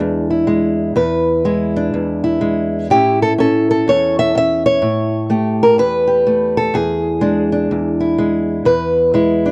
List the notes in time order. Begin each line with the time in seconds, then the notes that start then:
Already playing: G#3 D4 G#4
0.00 E2
0.30 E4
0.47 G#3
0.96 E2 B4
1.45 G#3 E4
1.76 D4
1.94 E2
2.24 E4
2.41 G#3
2.90 A2 C#4 E4 G4
3.22 A4
3.38 C#4 A4
3.71 A4
3.88 E2 C#5
4.19 E5
4.35 C#4 E5
4.66 C#5
4.82 A2
5.30 A3 G4
5.63 A#4
5.78 E2 B4
6.07 G4
6.27 A3
6.57 A4
6.74 E2 G#4
7.21 G#3 D4
7.52 D4
7.71 E2
8.00 E4
8.18 G#3
8.65 E2 B4
9.14 G#3 E4
9.46 D4